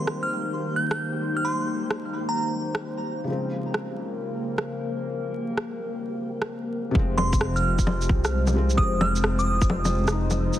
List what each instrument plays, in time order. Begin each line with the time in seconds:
Already playing: felt piano D#3 G3 A#3 C4, synth texture G3 G4, ambient pad A#3 D#4 C5
0.07 cross-stick
0.23 synth bell F6
0.76 synth bell G6
0.91 synth bell G6, cross-stick
1.37 synth bell F6
1.45 synth bell C6
1.91 cross-stick
2.29 synth bell A#5
2.75 cross-stick
3.24 felt piano C#3 F3
3.28 felt piano G#3 C4, ambient pad A#3 A#4
3.74 cross-stick
4.58 cross-stick
5.58 cross-stick
6.42 cross-stick
6.91 detuned saw bass F1, felt piano C3 F3, kick
6.96 ambient pad G#3 F4 C5, felt piano G#3 C4
7.18 synth bell C6, low bongo
7.33 kick, shaker
7.41 cross-stick
7.56 synth bell F6, shaker
7.79 kick, shaker
7.87 low bongo
8.02 shaker
8.09 detuned saw bass C2, kick
8.25 cross-stick, shaker
8.47 low bongo, shaker
8.54 felt piano C3 F3 G#3
8.58 felt piano C4
8.70 shaker
8.75 detuned saw bass F1, felt piano C3 F3, synth bell D#6, kick
8.80 felt piano G#3 C4
9.01 synth bell F6, low bongo
9.16 shaker
9.24 cross-stick
9.39 synth bell D#6, shaker
9.62 kick, shaker
9.70 low bongo
9.85 low bongo, shaker
9.92 detuned saw bass F1
10.04 felt piano C3 F3, cross-stick, shaker
10.09 felt piano G#3 D#4
10.31 low bongo, shaker
10.54 shaker